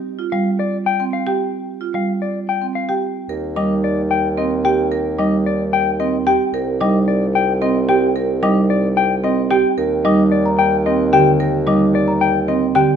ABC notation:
X:1
M:3/4
L:1/16
Q:1/4=111
K:Gphr
V:1 name="Celesta"
z8 z g z2 | z8 z g z2 | [K:Eblyd] z2 d' z6 z g z | z2 d' z6 z g z |
z2 d' z6 z g z | z2 d' z6 z g z | z2 d' z2 b z4 g z | z2 d' z2 b z4 g z |]
V:2 name="Clean electric guitar"
z2 f z d z g z f z3 | z2 f z d z g z f z3 | [K:Eblyd] z2 e z d z g z e z g z | z2 e z d z g z e z g z |
z2 e z d z g z e z g z | z2 e z d z g z e z g z | z2 e z d z g z e z g z | z2 e z d z g z e z g z |]
V:3 name="Marimba"
z F z4 z C z G z2 | z F z4 z C z G z2 | [K:Eblyd] B z E z4 z C z G z | B z E z4 z C z G z |
B z E z4 z C z G z | B z E z4 z C z G z | B z E z4 z C z G z | B z E z4 z C z G z |]
V:4 name="Marimba" clef=bass
z2 G, z8 z | z2 G, z8 z | [K:Eblyd] z2 G, z8 z | z2 G, z8 z |
z2 G, z8 z | z2 G, z8 z | z2 G, z6 z D, z | z2 G, z6 z D, z |]
V:5 name="Bassoon" clef=bass
z12 | z12 | [K:Eblyd] E,,12- | E,,12 |
C,,12- | C,,12 | E,,12- | E,,12 |]